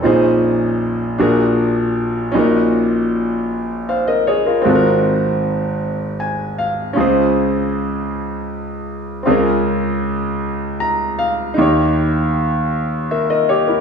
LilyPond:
<<
  \new Staff \with { instrumentName = "Grand piano" } { \time 6/8 \key bes \minor \tempo 4. = 52 << { r2. | r2 <c'' f''>16 <bes' ees''>16 <aes' des''>16 <f' bes'>16~ | <f' bes'>16 r4. r16 aes''8 f''8 | r2. |
r2 bes''8 f''8 | r2 <bes' fes''>16 <bes' ees''>16 <g' des''>16 <fes' bes'>16 | } \\ { <c' des' ees' aes' c''>4. <d' ges' aes' bes'>4. | <des' ees' ges' bes'>2. | <c' f' ges' a' bes'>2. | <des' f' aes' c''>2. |
<c' des' f' aes' bes'>2. | <ees' fes' g' des''>2 r4 | } >> }
  \new Staff \with { instrumentName = "Grand piano" } { \clef bass \time 6/8 \key bes \minor <bes,, bes,>4. <bes,, bes,>4. | <bes,, bes,>2. | <aes,, aes,>2. | <des, des>2. |
<des, des>2. | <ees, ees>2. | }
>>